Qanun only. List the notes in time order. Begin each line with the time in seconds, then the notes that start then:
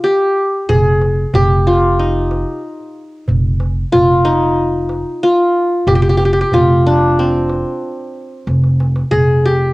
Already playing: F4
0.04 G4
0.69 G#4
1.35 G4
1.67 F4
1.99 D#4
3.92 F4
4.25 D#4
5.23 F4
5.88 G4
5.95 G4
6.02 G4
6.09 G4
6.17 G4
6.25 G4
6.33 G4
6.41 G4
6.54 F4
6.87 D4
7.19 C4
9.11 G#4
9.45 G4